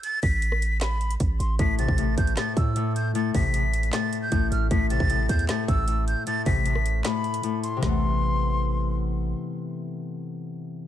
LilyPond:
<<
  \new Staff \with { instrumentName = "Flute" } { \time 4/4 \key a \minor \tempo 4 = 154 a'''8 b'''4. b''4. c'''8 | b'''8 a'''4 g'''8 a'''8 e'''4 g'''8 | a'''8 b'''4. a'''8. g'''8. f'''8 | b'''8 a'''4 g'''8 a'''8 e'''4 g'''8 |
a'''8 b'''4. b''4. c'''8 | c'''2. r4 | r1 | }
  \new Staff \with { instrumentName = "Harp" } { \clef bass \time 4/4 \key a \minor r1 | a,8 c8 a,4 a,4 a,4 | a,8 c8 a,4 a,4 a,4 | a,8 c8 a,4 a,4 a,4 |
a,8 c8 a,4 a,4 a,4 | <c e a b>1~ | <c e a b>1 | }
  \new Staff \with { instrumentName = "808-style bass" } { \clef bass \time 4/4 \key a \minor r8 a,,2~ a,,8 a,,8 a,,8 | a,,8. a,,8. a,,8 r8 a,4.~ | a,8 a,,4. r4 a,,8 a,,8 | a,,8. a,,8. e,8 r8 a,,4~ a,,16 r16 |
r8 a,,4. r2 | a,,1 | r1 | }
  \new DrumStaff \with { instrumentName = "Drums" } \drummode { \time 4/4 hh8 <hho bd>8 hh16 ss16 hh8 <hc hh sn>8 hh16 hh16 <hh bd>8 hh8 | <hh bd>8 hh16 bd16 hh8 <hh bd>16 hh16 <hc hh sn>8 <hh bd>8 hh8 hh8 | hh8 <hho bd>8 hh8 hh16 hh16 <hc hh sn>8 hh8 <hh bd>8 hh8 | <hh bd>8 hh16 bd16 hh8 <hh bd>16 hh16 <hc hh sn>8 <hh bd>8 hh8 hh8 |
hh8 <hho bd>8 hh16 ss16 hh8 <hc hh sn>8 hh16 hh16 hh8 hh8 | <sn tomfh>4 r4 r4 r4 | r4 r4 r4 r4 | }
>>